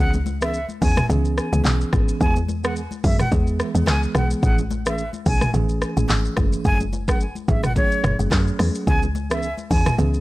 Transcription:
0.00 log drum bass C#2, tine electric piano E3 B3 C#4 G#4, flute F#5
0.13 high conga, shaker
0.26 high conga, shaker
0.41 tine electric piano E3 B3 C#4 G#4, flute E5, cross-stick, shaker
0.54 shaker
0.69 high conga, shaker
0.81 log drum bass E2, tine electric piano E3 B3 C#4 G#4, flute G#5, kick, open hi-hat, low conga, shaker
0.96 cross-stick, mid tom, high conga, shaker
1.09 log drum bass C#2, tine electric piano E3 B3 C#4 G#4, low conga, shaker
1.25 shaker
1.38 cross-stick, shaker
1.52 log drum bass C#2, tine electric piano E3 B3 C#4 G#4, high conga, shaker
1.64 log drum bass B1, clap, low conga, shaker
1.81 shaker
1.93 log drum bass G#1, tine electric piano E3 B3 C#4 G#4, kick, cross-stick, high conga, shaker
2.08 shaker
2.21 log drum bass E2, tine electric piano E3 G#3 B3 G#4, flute G#5, kick, shaker
2.36 high conga, shaker
2.48 high conga, shaker
2.64 tine electric piano E3 G#3 B3 G#4, flute F#5, cross-stick, shaker
2.76 shaker
2.91 high conga, shaker
3.04 log drum bass F#2, tine electric piano E3 G#3 B3 G#4, flute E5, kick, open hi-hat, low conga, shaker
3.19 flute F#5, cross-stick, mid tom, high conga, shaker
3.32 log drum bass E2, tine electric piano E3 G#3 B3 G#4, kick, low conga, shaker
3.47 shaker
3.60 cross-stick, shaker
3.75 log drum bass E2, tine electric piano E3 G#3 B3 G#4, high conga, shaker
3.86 log drum bass C#2, flute G#5, cross-stick, clap, low conga, shaker
4.03 shaker
4.15 log drum bass B1, tine electric piano E3 G#3 B3 G#4, flute F#5, cross-stick, high conga, shaker
4.31 shaker
4.43 log drum bass A1, tine electric piano E3 A3 C#4 G#4, flute F#5, kick, shaker
4.58 high conga, shaker
4.71 high conga, shaker
4.86 tine electric piano E3 A3 C#4 G#4, flute E5, cross-stick, shaker
4.98 shaker
5.13 high conga, shaker
5.26 log drum bass B1, tine electric piano E3 A3 C#4 G#4, flute G#5, kick, open hi-hat, low conga, shaker
5.41 cross-stick, mid tom, high conga, shaker
5.54 log drum bass A1, tine electric piano E3 A3 C#4 G#4, low conga, shaker
5.69 shaker
5.82 cross-stick, shaker
5.97 log drum bass A1, tine electric piano E3 A3 C#4 G#4, high conga, shaker
6.08 log drum bass G#1, clap, low conga, shaker
6.25 shaker
6.37 log drum bass F#1, tine electric piano E3 A3 C#4 G#4, kick, cross-stick, high conga, shaker
6.53 shaker
6.65 log drum bass F#1, tine electric piano F#3 A3 C#4 G#4, flute G#5, kick, shaker
6.80 high conga, shaker
6.93 high conga, shaker
7.08 tine electric piano F#3 A3 C#4 G#4, flute F#5, kick, cross-stick, shaker
7.20 shaker
7.35 high conga, shaker
7.48 log drum bass G#1, tine electric piano F#3 A3 C#4 G#4, flute E5, kick, low conga, shaker
7.63 flute F#5, cross-stick, mid tom, high conga, shaker
7.76 tine electric piano F#3 A3 C#4 G#4, flute C#5, kick, low conga, shaker
7.91 shaker
8.04 log drum bass F#1, cross-stick, mid tom, shaker
8.19 log drum bass F#1, tine electric piano F#3 A3 C#4 G#4, high conga, shaker
8.30 log drum bass F#2, kick, cross-stick, clap, low conga, shaker
8.47 shaker
8.59 log drum bass E2, tine electric piano F#3 A3 C#4 G#4, cross-stick, open hi-hat, high conga, shaker
8.75 shaker
8.87 log drum bass C#2, tine electric piano E3 B3 C#4 G#4, flute G#5, kick, shaker
9.03 high conga, shaker
9.15 high conga, shaker
9.30 tine electric piano E3 B3 C#4 G#4, flute E5, cross-stick, shaker
9.43 shaker
9.57 high conga, shaker
9.71 log drum bass E2, tine electric piano E3 B3 C#4 G#4, flute G#5, kick, open hi-hat, low conga, shaker
9.85 cross-stick, mid tom, high conga, shaker
9.98 log drum bass C#2, tine electric piano E3 B3 C#4 G#4, low conga, shaker
10.14 shaker

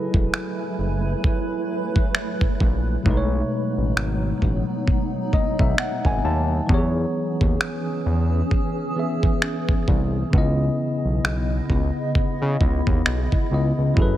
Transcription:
Already playing: tine electric piano F#3 E4 G#4 A4 B4, ambient pad F#3 A3 E4 B4 G#5
0.14 analog synth bass E1, kick
0.34 finger snap
0.79 analog synth bass F#1
1.24 kick
1.96 kick
2.15 finger snap
2.41 kick
2.60 analog synth bass A#1, kick
3.03 analog synth bass B1, tine electric piano B2 A3 D#4, ambient pad F#3 B3 D#4, kick
3.09 tine electric piano G#3 B4
3.17 tine electric piano C#5
3.77 analog synth bass A1
3.96 analog synth bass G#1, finger snap
4.42 analog synth bass A1, kick
4.88 kick
5.33 analog synth bass B1, tine electric piano D#5, kick
5.59 analog synth bass B1, tine electric piano E5, kick
5.78 tine electric piano F#5, finger snap
6.05 analog synth bass G#1, tine electric piano G#5, kick
6.24 analog synth bass D#2, tine electric piano A5
6.67 analog synth bass E2, tine electric piano E3 B3, ambient pad E3 C#4 G#4, kick
6.72 tine electric piano G4 C#5
6.78 tine electric piano G#4
7.41 analog synth bass D#2, kick
7.61 finger snap
8.06 analog synth bass E2
8.51 kick
8.96 tine electric piano E3 B3 G#4 E5
9.23 kick
9.42 finger snap
9.69 kick
9.88 analog synth bass C2, kick
10.30 analog synth bass C#2, tine electric piano C#3 B3, ambient pad C#3 B3 E4 D#5, kick
10.35 tine electric piano E4 D#5
11.05 analog synth bass B1
11.24 analog synth bass B1, finger snap
11.70 analog synth bass C#2, kick
12.15 kick
12.42 analog synth bass C#3
12.61 analog synth bass C#2, kick
12.87 analog synth bass D#2, kick
13.06 analog synth bass B1, finger snap
13.32 kick
13.51 analog synth bass C#2, tine electric piano C#3 B3 E4 D#5
13.78 analog synth bass C#2
13.94 analog synth bass F#1, tine electric piano F#3 E4 G#4, kick
14.00 tine electric piano A4 B4

